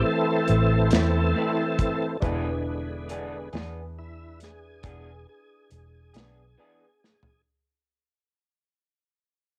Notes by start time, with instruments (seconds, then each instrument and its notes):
Already playing: tonewheel organ E3 A3 C4, upright piano C4 E4 A4 C5
0.05 tonewheel organ A4
0.48 fingered electric bass A1, tonewheel organ A4, closed hi-hat
0.91 fingered electric bass E2, clean electric guitar C4 E4, snare, closed hi-hat
0.96 clean electric guitar E3
1.34 clean electric guitar A2 E3 C4 E4
1.79 kick, closed hi-hat
2.20 fingered electric bass E1, tonewheel organ D3 G#3 B3, clean electric guitar E3 B3 D4 G#4, upright piano D4 E4 G#4 B4, kick, closed hi-hat
3.09 clean electric guitar E3 B3 D4 G#4, closed hi-hat
3.53 fingered electric bass E2, clean electric guitar B3 D4 G#4, snare, closed hi-hat
3.98 tonewheel organ E4
4.40 tonewheel organ G#4, snare, closed hi-hat
4.83 fingered electric bass E1, clean electric guitar E3 B3 D4 G#4, kick, closed hi-hat
5.29 tonewheel organ G#4
5.71 fingered electric bass E1, tonewheel organ G#4, closed hi-hat
6.14 fingered electric bass B1, clean electric guitar B3 D4 G#4, snare, closed hi-hat
6.58 clean electric guitar E3 B3 D4 G#4
7.04 snare
7.23 floor tom